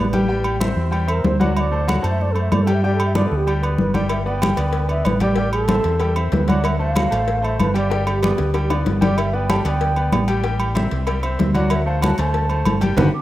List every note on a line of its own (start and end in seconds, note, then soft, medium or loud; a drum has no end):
0.00 0.71 A1 medium
0.00 0.43 B4 loud
0.13 0.26 G3 medium
0.13 0.26 G4 medium
0.13 0.27 G5 medium
0.13 high conga medium
0.13 low agogo medium
0.28 0.55 G3 medium
0.28 0.55 G4 medium
0.28 0.55 G5 medium
0.28 high conga soft
0.44 high conga soft
0.44 low agogo loud
0.60 0.87 C4 medium
0.60 0.87 C5 medium
0.60 0.87 E5 medium
0.60 high conga loud
0.60 low agogo medium
0.76 1.21 E2 loud
0.76 high conga soft
0.91 1.05 G3 medium
0.91 1.05 G4 medium
0.91 1.05 G5 medium
0.91 high conga soft
0.91 low agogo medium
1.07 1.34 C4 medium
1.07 1.26 A#4 loud
1.07 1.34 C5 medium
1.07 1.34 E5 medium
1.07 high conga soft
1.07 low agogo loud
1.24 1.98 D2 loud
1.24 1.42 C5 loud
1.24 high conga medium
1.24 low timbale medium
1.40 1.66 F#3 loud
1.40 1.66 F#4 medium
1.40 1.55 D5 medium
1.40 1.66 F#5 medium
1.40 high conga medium
1.40 low agogo medium
1.56 1.87 D5 loud
1.56 1.60 E5 loud
1.56 high conga soft
1.56 low agogo loud
1.71 1.85 A3 medium
1.71 1.85 A4 medium
1.71 1.85 C5 medium
1.71 high conga soft
1.87 2.01 F#3 medium
1.87 2.01 F#4 medium
1.87 2.01 F#5 medium
1.87 high conga loud
1.87 low agogo loud
2.02 2.48 F#2 medium
2.02 2.29 A3 medium
2.02 2.29 A4 medium
2.02 2.29 C5 medium
2.02 high conga soft
2.02 low agogo medium
2.10 2.23 E5 medium
2.21 2.33 D5 medium
2.21 high conga soft
2.32 2.61 A3 medium
2.32 2.40 A4 loud
2.32 2.61 A4 medium
2.32 2.61 C5 medium
2.32 low agogo medium
2.37 high conga soft
2.41 2.54 E5 medium
2.52 3.25 G2 medium
2.52 2.64 D5 medium
2.52 high conga medium
2.52 low timbale medium
2.52 low agogo loud
2.63 2.80 G3 medium
2.63 2.75 A4 medium
2.67 2.80 G4 medium
2.67 2.80 G5 medium
2.67 low agogo medium
2.74 2.83 E5 medium
2.84 3.09 G3 medium
2.84 3.10 G4 medium
2.84 2.94 D5 medium
2.84 3.10 G5 medium
2.84 high conga soft
2.95 3.05 A4 medium
3.00 high conga soft
3.00 low agogo loud
3.05 3.15 E5 medium
3.15 3.41 B3 medium
3.15 3.41 B4 medium
3.15 3.41 D5 medium
3.15 3.28 D5 medium
3.15 high conga loud
3.15 low agogo medium
3.27 3.38 A4 medium
3.31 3.75 D2 medium
3.31 high conga soft
3.36 3.52 G4 loud
3.47 3.60 G3 medium
3.47 3.60 G4 medium
3.47 3.60 G5 medium
3.47 high conga soft
3.47 low agogo medium
3.62 3.88 B3 medium
3.62 3.89 B4 medium
3.62 3.89 D5 medium
3.62 high conga soft
3.62 low agogo medium
3.78 4.52 G1 medium
3.78 3.96 B4 medium
3.78 high conga medium
3.94 4.20 G3 medium
3.94 4.20 G4 medium
3.94 4.10 D5 medium
3.94 4.21 G5 medium
3.94 high conga medium
3.94 low agogo medium
4.09 4.25 E5 medium
4.09 cowbell loud
4.09 high conga soft
4.09 low agogo loud
4.25 4.39 B3 medium
4.25 4.39 B4 medium
4.25 4.39 D5 medium
4.25 4.88 G5 medium
4.25 high conga soft
4.42 4.55 G3 medium
4.42 4.55 G4 medium
4.42 4.55 G5 medium
4.42 cowbell medium
4.42 high conga loud
4.42 low agogo loud
4.56 5.02 D2 medium
4.56 4.83 B3 medium
4.56 4.83 B4 medium
4.56 4.83 D5 medium
4.56 cowbell medium
4.56 high conga soft
4.56 low agogo medium
4.73 cowbell loud
4.73 high conga soft
4.88 5.15 B3 medium
4.88 5.15 B4 medium
4.88 5.15 D5 medium
4.88 5.07 E5 loud
4.88 high conga soft
4.88 low agogo medium
5.05 5.79 A1 loud
5.05 5.21 B4 loud
5.05 cowbell medium
5.05 high conga medium
5.05 low agogo loud
5.20 5.34 G3 medium
5.20 5.34 G4 medium
5.20 5.36 D5 medium
5.20 5.34 G5 medium
5.20 cowbell medium
5.20 high conga medium
5.20 low agogo medium
5.36 5.63 G3 medium
5.36 5.63 G4 medium
5.36 5.52 D5 medium
5.36 5.63 G5 medium
5.36 cowbell loud
5.36 high conga soft
5.53 5.64 G#4 loud
5.53 high conga soft
5.53 low agogo loud
5.64 6.14 A4 loud
5.64 cowbell medium
5.68 5.95 C4 medium
5.68 5.95 C5 medium
5.68 5.95 E5 medium
5.68 high conga loud
5.68 low agogo medium
5.84 6.29 E2 loud
5.84 cowbell medium
5.84 high conga soft
6.00 6.13 G3 medium
6.00 6.13 G4 medium
6.00 6.14 G5 medium
6.00 cowbell loud
6.00 high conga soft
6.00 low agogo medium
6.16 6.42 C4 medium
6.16 6.42 C5 medium
6.16 6.43 E5 medium
6.16 high conga soft
6.16 low agogo loud
6.32 7.06 D2 loud
6.32 6.50 B4 medium
6.32 cowbell medium
6.32 high conga medium
6.32 low timbale medium
6.48 6.74 F#3 medium
6.48 6.74 F#4 medium
6.48 6.67 D5 loud
6.48 6.74 F#5 medium
6.48 cowbell medium
6.48 high conga medium
6.48 low agogo medium
6.64 6.79 E5 loud
6.64 cowbell loud
6.64 high conga soft
6.64 low agogo loud
6.79 6.92 A3 medium
6.79 6.92 A4 medium
6.79 6.93 C5 medium
6.79 7.46 F5 loud
6.79 high conga soft
6.96 7.09 F#3 medium
6.96 7.09 F#4 medium
6.96 7.09 F#5 medium
6.96 cowbell medium
6.96 high conga loud
6.96 low agogo loud
7.10 7.56 A1 medium
7.10 7.37 A3 medium
7.10 7.37 A4 medium
7.10 7.37 C5 medium
7.10 cowbell medium
7.10 high conga soft
7.10 low agogo medium
7.28 cowbell loud
7.28 high conga soft
7.41 7.68 A3 medium
7.41 7.68 A4 medium
7.41 7.69 C5 medium
7.41 7.59 E5 loud
7.41 high conga soft
7.41 low agogo medium
7.59 8.32 G1 loud
7.59 7.75 B4 medium
7.59 cowbell medium
7.59 high conga medium
7.59 low agogo loud
7.74 7.87 G3 medium
7.74 7.87 G4 medium
7.74 7.91 D5 medium
7.74 7.88 G5 medium
7.74 cowbell medium
7.74 low agogo medium
7.90 8.16 G3 medium
7.90 8.16 G4 medium
7.90 8.07 D5 loud
7.90 8.17 G5 medium
7.90 cowbell loud
7.90 high bongo medium
7.90 high conga soft
8.07 8.12 A4 medium
8.07 high bongo medium
8.07 high conga soft
8.07 low agogo loud
8.11 8.68 G4 loud
8.22 8.48 B3 medium
8.22 8.48 B4 medium
8.22 8.49 D5 medium
8.22 cowbell medium
8.22 high bongo medium
8.22 high conga loud
8.22 low agogo medium
8.38 8.83 D2 medium
8.38 cowbell medium
8.38 high bongo medium
8.38 high conga soft
8.54 8.67 G3 medium
8.54 8.67 G4 medium
8.54 8.68 G5 medium
8.54 cowbell loud
8.54 low bongo medium
8.54 high conga soft
8.54 low agogo medium
8.70 8.96 B3 medium
8.70 8.96 B4 medium
8.70 8.96 D5 medium
8.70 low bongo loud
8.70 high conga soft
8.70 low agogo loud
8.86 9.59 G1 loud
8.86 cowbell medium
8.86 low bongo medium
8.86 high conga medium
9.01 9.27 G3 medium
9.01 9.27 G4 medium
9.01 9.19 D5 loud
9.01 9.27 G5 medium
9.01 cowbell medium
9.01 low bongo medium
9.01 high conga medium
9.01 low agogo medium
9.18 9.36 E5 medium
9.18 cowbell loud
9.18 high conga soft
9.18 low agogo loud
9.33 9.46 B3 medium
9.33 9.46 B4 medium
9.33 9.46 D5 medium
9.33 9.52 G5 medium
9.33 high conga soft
9.50 9.62 G3 medium
9.50 9.62 G4 medium
9.50 9.63 G5 medium
9.50 9.65 A5 medium
9.50 cowbell medium
9.50 high conga loud
9.50 low agogo loud
9.65 10.09 D2 medium
9.65 9.91 B3 medium
9.65 9.91 B4 medium
9.65 9.91 D5 medium
9.65 9.70 A5 loud
9.65 cowbell medium
9.65 high conga soft
9.65 low agogo medium
9.69 10.27 G5 loud
9.81 cowbell loud
9.81 high conga soft
9.96 10.23 B3 medium
9.96 10.23 B4 medium
9.96 10.23 D5 medium
9.96 high conga soft
9.96 low agogo medium
10.12 10.86 A1 loud
10.12 cowbell medium
10.12 high conga medium
10.12 low timbale medium
10.12 low agogo loud
10.28 10.41 G3 medium
10.28 10.41 G4 medium
10.28 10.41 G5 medium
10.28 cowbell medium
10.28 low agogo medium
10.43 10.70 G3 medium
10.43 10.70 G4 medium
10.43 10.70 G5 medium
10.43 cowbell loud
10.43 high conga soft
10.60 high conga soft
10.60 low agogo loud
10.75 11.01 C4 medium
10.75 11.01 C5 medium
10.75 11.01 E5 medium
10.75 cowbell medium
10.75 high conga loud
10.75 low agogo medium
10.91 11.36 C2 loud
10.91 cowbell medium
10.91 high conga soft
11.07 11.20 G3 medium
11.07 11.21 G4 medium
11.07 11.21 G5 medium
11.07 cowbell loud
11.07 high conga soft
11.07 low agogo medium
11.23 11.49 C4 medium
11.23 11.49 C5 medium
11.23 11.49 E5 medium
11.23 high conga soft
11.23 low agogo loud
11.39 12.13 D2 medium
11.39 cowbell medium
11.39 high conga loud
11.39 low timbale medium
11.54 11.80 F#3 loud
11.54 11.81 F#4 medium
11.54 11.72 D5 loud
11.54 11.81 F#5 medium
11.54 cowbell medium
11.54 high conga medium
11.54 low agogo medium
11.70 11.88 E5 loud
11.70 cowbell loud
11.70 high conga soft
11.70 low agogo loud
11.86 11.99 A3 medium
11.86 11.99 A4 medium
11.86 11.99 C5 medium
11.86 12.02 F5 medium
11.86 high conga soft
12.01 12.15 F#3 medium
12.01 12.15 F#4 medium
12.01 12.15 F#5 medium
12.01 12.18 A5 loud
12.01 cowbell medium
12.01 high conga loud
12.01 low agogo loud
12.18 12.62 D2 loud
12.18 12.44 A3 medium
12.18 12.44 A4 medium
12.18 12.44 C5 medium
12.18 12.80 A5 loud
12.18 cowbell medium
12.18 high conga soft
12.18 low agogo medium
12.34 cowbell loud
12.34 high conga soft
12.49 12.75 A3 medium
12.49 12.75 A4 medium
12.49 12.75 C5 medium
12.49 high conga soft
12.49 low agogo medium
12.65 12.94 G1 loud
12.65 cowbell medium
12.65 high conga medium
12.65 low agogo loud
12.81 12.94 G3 medium
12.81 12.94 G4 medium
12.81 12.94 G5 loud
12.81 cowbell medium
12.81 high conga medium
12.81 low agogo medium
12.96 13.08 G1 loud
12.96 13.07 F#4 loud
12.96 13.07 G4 loud
12.96 13.07 B4 loud
12.96 cowbell medium
12.96 low conga loud
12.96 high timbale loud
13.14 13.22 D6 medium